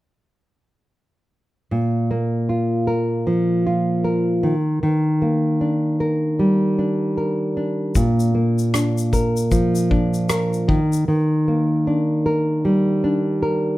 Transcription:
1.71 A#2
2.11 A#3
2.49 F4
2.87 A#4
3.27 F3
3.67 F4
4.04 A#4
4.43 D#3
4.83 D#3
5.22 A#3
5.61 D4
6.00 A#4
6.39 G3
6.79 D4
7.18 A#4
7.57 D4
7.95 A#2, kick, shaker
8.20 shaker
8.35 A#3
8.59 shaker
8.74 D4, cross-stick, shaker
8.98 shaker
9.13 A#4, kick, shaker
9.37 shaker
9.51 F3, kick, shaker
9.75 shaker
9.91 D4, kick
10.14 shaker
10.29 A#4, cross-stick, shaker
10.53 shaker
10.68 D#3, kick
10.93 shaker
11.08 D#3
11.48 A#3
11.87 D4
12.26 A#4
12.65 G3
13.04 D4
13.43 A#4

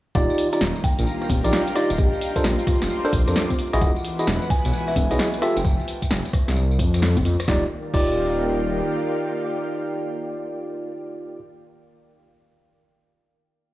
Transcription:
0.15 D#1 D#3 G3 A#3 D4 D#4 F4 G4 D5 F5, kick, tambourine
0.30 tambourine
0.38 A#5, open hi-hat
0.53 D#4 F4 G4 D5 A#5, closed hi-hat, tambourine
0.61 D#1, snare
0.65 F5
0.76 tambourine
0.84 G5, kick, open hi-hat
0.89 G5
0.99 A#1, closed hi-hat, tambourine
1.07 tambourine
1.22 cross-stick, tambourine
1.30 D#1, kick, open hi-hat, high conga
1.44 A#1 D#4 F4 G4 D5, closed hi-hat, tambourine
1.53 snare, tambourine
1.67 closed hi-hat, tambourine
1.76 D#4 F4 G4 D5 D#5, cross-stick, open hi-hat
1.90 D#1, closed hi-hat, tambourine
1.98 A#1 A3 C4 F4 G4, kick, tambourine
2.13 tambourine
2.21 open hi-hat
2.29 C6
2.36 D4 F4 A4 A#4 C5, kick, closed hi-hat, tambourine
2.44 A#1 F4, snare, tambourine
2.59 closed hi-hat, tambourine
2.67 F4, kick, cross-stick, open hi-hat
2.82 F1 D6, snare, closed hi-hat, tambourine
2.90 tambourine
3.05 D4 A4 A#4 C5, tambourine
3.13 A#1, kick, open hi-hat
3.28 F2 D4 A4 A#4 C5, cross-stick, closed hi-hat, tambourine
3.36 snare, tambourine
3.50 kick, closed hi-hat, tambourine, high conga
3.59 open hi-hat
3.73 A#1 E4 F#4 G#4 D#5, cross-stick, closed hi-hat, tambourine
3.82 E1 E3 G#3 B3 E4 F#4 F#5, kick, tambourine
3.96 tambourine
4.01 F#5, open hi-hat
4.09 B4
4.19 E4 F#4 G#4 D#5 B5, closed hi-hat, tambourine
4.27 E1, snare, tambourine
4.42 tambourine
4.48 G#5, kick, open hi-hat
4.65 B1, closed hi-hat, tambourine
4.73 tambourine
4.88 E5, cross-stick, tambourine
4.96 E1, kick, open hi-hat, high conga
5.11 B1 E4 F#4 G#4 D#5, closed hi-hat, tambourine
5.19 snare, tambourine
5.34 closed hi-hat, tambourine
5.42 F4 G4 A4 E5 G5, cross-stick, open hi-hat
5.55 F1 C5 G5 A5, closed hi-hat, tambourine
5.65 F1, kick, tambourine
5.80 tambourine
5.88 open hi-hat
6.02 kick, closed hi-hat, tambourine
6.11 F1, snare, tambourine
6.25 closed hi-hat, tambourine
6.33 kick, cross-stick, open hi-hat
6.48 C2, snare, closed hi-hat, tambourine
6.57 tambourine
6.71 tambourine
6.79 F2, kick, open hi-hat
6.94 cross-stick, closed hi-hat, tambourine
7.02 snare
7.17 F1, kick, closed hi-hat, tambourine, high conga
7.25 F2, open hi-hat
7.40 cross-stick, closed hi-hat, tambourine
7.48 D#1 D#3 A#3 D#4 F4 G4 D5, kick, snare
7.57 A#4
7.64 F5
7.69 G5
7.94 D#1 D#4 F4 G4 D5, kick, crash

